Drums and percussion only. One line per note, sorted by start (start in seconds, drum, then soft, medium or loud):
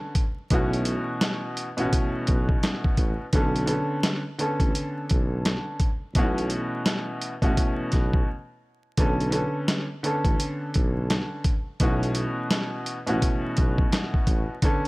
0.15 kick medium
0.15 closed hi-hat medium
0.50 kick loud
0.50 closed hi-hat medium
0.73 closed hi-hat soft
0.85 closed hi-hat medium
1.21 snare loud
1.21 closed hi-hat loud
1.57 closed hi-hat medium
1.78 closed hi-hat medium
1.93 kick medium
1.93 closed hi-hat loud
2.27 kick loud
2.27 closed hi-hat medium
2.49 kick loud
2.63 snare loud
2.63 closed hi-hat medium
2.84 kick loud
2.97 kick medium
2.97 closed hi-hat medium
3.33 kick loud
3.33 closed hi-hat medium
3.56 closed hi-hat soft
3.67 closed hi-hat medium
4.03 snare loud
4.03 closed hi-hat loud
4.39 closed hi-hat medium
4.60 kick loud
4.60 closed hi-hat medium
4.75 closed hi-hat loud
5.09 kick loud
5.09 closed hi-hat medium
5.45 snare loud
5.45 closed hi-hat medium
5.80 kick medium
5.80 closed hi-hat medium
6.15 kick loud
6.15 closed hi-hat medium
6.38 closed hi-hat soft
6.50 closed hi-hat medium
6.86 snare loud
6.86 closed hi-hat loud
7.22 closed hi-hat medium
7.42 kick loud
7.42 closed hi-hat medium
7.57 kick medium
7.57 closed hi-hat loud
7.92 kick loud
7.92 snare soft
7.92 closed hi-hat medium
8.13 kick loud
8.97 kick loud
8.97 closed hi-hat medium
9.20 closed hi-hat soft
9.32 closed hi-hat medium
9.68 snare loud
9.68 closed hi-hat loud
10.04 closed hi-hat medium
10.25 kick loud
10.25 closed hi-hat medium
10.40 closed hi-hat loud
10.74 kick medium
10.74 closed hi-hat medium
11.10 snare loud
11.10 closed hi-hat medium
11.44 kick medium
11.44 closed hi-hat medium
11.80 kick loud
11.80 closed hi-hat medium
12.03 closed hi-hat soft
12.15 closed hi-hat medium
12.51 snare loud
12.51 closed hi-hat loud
12.86 closed hi-hat medium
13.07 closed hi-hat medium
13.22 kick medium
13.22 closed hi-hat loud
13.57 kick loud
13.57 closed hi-hat medium
13.78 kick loud
13.92 snare loud
13.92 closed hi-hat medium
14.14 kick loud
14.27 kick medium
14.27 closed hi-hat medium
14.62 kick loud
14.62 closed hi-hat medium